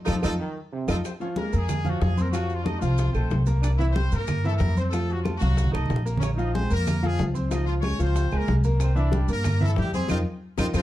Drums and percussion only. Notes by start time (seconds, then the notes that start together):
0.07 low bongo, high conga, claves, maracas
0.23 low bongo, high conga, claves, maracas
0.88 low bongo, high conga, claves, maracas
1.05 high bongo, claves, maracas
1.20 high conga, maracas
1.36 high bongo, high conga, maracas
1.53 high conga, maracas
1.69 high bongo, high conga, low conga, claves, maracas
1.85 high conga, low conga, maracas
2.01 high bongo, low bongo, high conga, maracas
2.17 high conga, maracas
2.34 high bongo, high conga, claves, maracas
2.49 high bongo, high conga, maracas
2.66 high bongo, high conga, claves, maracas
2.82 high bongo, high conga, maracas
2.98 high bongo, high conga, maracas
3.14 high conga, claves, maracas
3.30 high bongo, low bongo, high conga, maracas
3.46 high bongo, high conga, maracas
3.63 high bongo, high conga, claves, maracas
3.80 high conga, maracas
3.96 high bongo, high conga, maracas
4.12 high conga, maracas
4.27 high bongo, high conga, low conga, claves, maracas
4.44 high conga, maracas
4.60 high bongo, low bongo, high conga, maracas
4.77 high conga, maracas
4.93 high bongo, high conga, claves, maracas
5.09 high bongo, high conga, maracas
5.25 high bongo, high conga, claves, maracas
5.41 high bongo, high conga, maracas
5.53 high conga
5.57 high bongo, maracas
5.64 low conga
5.74 low conga, claves, maracas
5.86 low conga
5.90 high bongo, low bongo, maracas
5.96 low conga
6.06 high bongo, maracas
6.17 low conga
6.22 high bongo, claves, maracas
6.39 high conga, maracas
6.55 high bongo, high conga, maracas
6.71 high conga, maracas
6.87 high bongo, high conga, low conga, claves, maracas
7.03 high conga, low conga, maracas
7.19 high bongo, low bongo, high conga, maracas
7.35 high conga, maracas
7.51 high bongo, high conga, claves, maracas
7.68 high bongo, high conga, maracas
7.83 high bongo, high conga, claves, maracas
8.00 high bongo, high conga, maracas
8.16 high bongo, high conga, maracas
8.31 high conga, claves, maracas
8.47 high bongo, low bongo, high conga, maracas
8.64 high bongo, high conga, maracas
8.80 high bongo, high conga, claves, maracas
8.97 high conga, maracas
9.12 high bongo, high conga, maracas
9.28 high conga, maracas
9.44 high bongo, high conga, low conga, claves, maracas
9.61 high conga, low conga, maracas
9.76 high bongo, low bongo, high conga, maracas
9.94 high conga, maracas
10.08 high bongo, high conga, claves, maracas
10.58 high bongo, high conga, claves, maracas
10.74 high bongo, high conga, claves, maracas